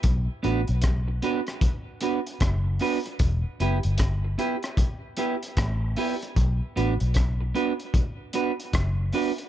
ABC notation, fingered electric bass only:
X:1
M:4/4
L:1/16
Q:"Swing 16ths" 1/4=76
K:Bphr
V:1 name="Fingered electric bass" clef=bass
B,,, z A,,, B,,,3 z6 F,,,2 z2 | E,,, z F,,, G,,,3 z6 A,,,2 z2 | B,,, z A,,, B,,,3 z6 F,,,2 z2 |]